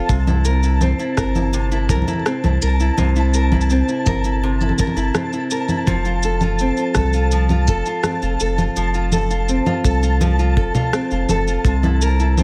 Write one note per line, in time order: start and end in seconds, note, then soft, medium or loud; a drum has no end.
0.00 0.17 F3 medium
0.00 0.48 C4 medium
0.00 0.16 F4 medium
0.00 0.17 A4 medium
0.00 12.43 A5 medium
0.09 0.93 C2 medium
0.09 1.52 C3 medium
0.09 kick loud
0.09 shaker soft
0.27 0.62 E4 medium
0.27 low conga medium
0.27 shaker soft
0.45 1.16 A#4 medium
0.45 shaker medium
0.63 0.98 E4 medium
0.63 shaker soft
0.81 2.25 C4 medium
0.81 low conga medium
0.81 shaker soft
0.99 1.35 E4 medium
0.99 shaker soft
1.17 1.90 G1 medium
1.17 1.88 A#4 medium
1.17 kick loud
1.17 cross-stick medium
1.17 shaker medium
1.35 1.70 E4 medium
1.35 low conga medium
1.35 shaker soft
1.53 2.96 C3 medium
1.53 shaker soft
1.72 2.07 E4 medium
1.72 shaker soft
1.89 2.03 C2 medium
1.89 2.61 A#4 medium
1.89 kick medium
1.89 low conga medium
1.89 shaker medium
1.96 low conga medium
2.02 low conga soft
2.08 2.43 E4 medium
2.08 low conga soft
2.08 shaker soft
2.13 low conga soft
2.19 low conga soft
2.26 3.70 C4 medium
2.26 cross-stick medium
2.26 shaker soft
2.44 2.58 C2 medium
2.44 2.79 E4 medium
2.44 low conga medium
2.44 shaker soft
2.62 2.91 C2 medium
2.62 3.33 A#4 medium
2.62 shaker medium
2.80 3.15 E4 medium
2.80 shaker soft
2.98 3.82 C2 medium
2.98 4.42 C3 medium
2.98 low conga medium
2.98 shaker soft
3.16 3.51 E4 medium
3.16 shaker soft
3.34 4.06 A#4 medium
3.34 shaker medium
3.52 3.88 E4 medium
3.52 kick medium
3.52 low conga medium
3.61 shaker soft
3.70 5.15 C4 medium
3.70 shaker soft
3.88 4.24 E4 medium
3.88 shaker soft
4.06 4.73 G1 medium
4.06 4.78 A#4 medium
4.06 kick loud
4.06 low conga medium
4.06 shaker medium
4.24 4.60 E4 medium
4.24 shaker soft
4.43 5.95 C3 medium
4.61 4.95 E4 medium
4.61 low conga soft
4.61 shaker soft
4.69 low conga soft
4.78 5.50 A#4 medium
4.78 kick medium
4.78 low conga soft
4.78 shaker medium
4.87 low conga medium
4.96 5.11 G1 medium
4.96 5.32 E4 medium
4.96 shaker soft
5.15 6.60 C4 medium
5.15 cross-stick medium
5.15 low conga medium
5.15 shaker soft
5.33 5.68 E4 medium
5.33 shaker soft
5.51 5.95 A#4 medium
5.51 shaker medium
5.69 5.95 E4 medium
5.69 low conga medium
5.69 shaker soft
5.87 6.71 F1 medium
5.87 7.31 F3 medium
5.87 kick loud
5.87 low conga medium
5.87 shaker soft
6.05 6.42 F4 medium
6.05 shaker soft
6.23 6.96 A4 medium
6.23 shaker medium
6.41 6.77 F4 medium
6.41 low conga medium
6.41 shaker soft
6.59 8.05 C4 medium
6.59 shaker soft
6.77 7.13 F4 medium
6.77 shaker soft
6.95 7.69 C2 medium
6.95 7.67 A4 medium
6.95 kick loud
6.95 cross-stick medium
6.95 low conga medium
6.95 shaker medium
7.13 7.49 F4 medium
7.13 shaker soft
7.31 8.75 F3 medium
7.31 shaker soft
7.49 7.86 F4 medium
7.49 low conga medium
7.49 shaker soft
7.67 7.82 F1 medium
7.67 8.39 A4 medium
7.67 kick medium
7.67 shaker medium
7.86 8.22 F4 medium
7.86 shaker soft
8.03 9.48 C4 medium
8.03 cross-stick medium
8.03 low conga medium
8.03 shaker soft
8.22 8.37 F1 medium
8.22 8.57 F4 medium
8.22 shaker soft
8.40 8.69 F1 loud
8.40 9.11 A4 medium
8.40 shaker medium
8.58 8.94 F4 medium
8.58 low conga medium
8.58 shaker soft
8.76 9.61 F1 medium
8.76 10.20 F3 medium
8.76 shaker soft
8.94 9.29 F4 medium
8.94 shaker soft
9.12 9.83 A4 medium
9.12 low conga medium
9.12 shaker medium
9.30 9.65 F4 medium
9.30 shaker soft
9.49 10.93 C4 medium
9.49 shaker soft
9.66 10.02 F4 medium
9.66 low conga medium
9.66 shaker soft
9.84 10.58 C2 medium
9.84 10.56 A4 medium
9.84 kick loud
9.84 shaker medium
10.03 10.38 F4 medium
10.03 shaker soft
10.21 11.73 F3 medium
10.21 low conga medium
10.21 shaker soft
10.39 10.73 F4 medium
10.39 shaker soft
10.57 10.71 F1 medium
10.57 11.29 A4 medium
10.57 kick medium
10.75 11.10 F4 medium
10.75 low conga medium
10.75 shaker soft
10.93 12.05 C4 medium
10.93 cross-stick medium
10.93 shaker soft
11.11 11.26 F1 medium
11.11 11.46 F4 medium
11.11 shaker soft
11.29 11.58 F1 loud
11.29 11.73 A4 medium
11.29 low conga medium
11.29 shaker medium
11.48 11.73 F4 medium
11.48 shaker soft
11.64 12.43 C2 medium
11.64 12.43 C3 medium
11.64 kick loud
11.64 shaker soft
11.83 12.18 E4 medium
11.83 low conga medium
11.83 shaker soft
12.01 12.43 A#4 medium
12.01 shaker medium
12.20 12.43 E4 medium
12.20 shaker soft
12.38 12.43 C4 medium
12.38 low conga medium
12.38 shaker soft